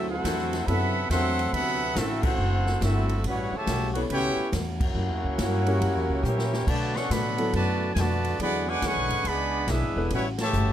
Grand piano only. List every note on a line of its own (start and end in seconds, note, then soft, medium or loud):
0.00 0.48 F#3 medium
0.00 0.47 C4 medium
0.00 0.47 E4 medium
0.00 0.48 A4 medium
0.68 0.93 F#3 medium
0.68 0.93 B3 medium
0.68 0.93 E4 medium
0.68 0.93 A4 medium
3.96 4.50 B3 medium
3.96 4.50 E4 medium
3.96 4.51 A4 medium
3.96 4.51 C#5 medium
5.67 6.22 C#4 medium
5.67 6.22 E4 medium
5.67 6.22 G4 medium
5.67 6.22 A#4 medium
7.38 7.93 F#3 medium
7.38 7.93 B3 medium
7.38 7.93 E4 medium
7.38 7.93 A4 medium
8.41 8.65 F#3 medium
8.41 8.65 B3 medium
8.41 8.65 E4 medium
8.41 8.65 G#4 medium
9.97 10.10 B3 medium
9.97 10.10 E4 medium
9.97 10.10 A4 medium
9.97 10.10 B4 medium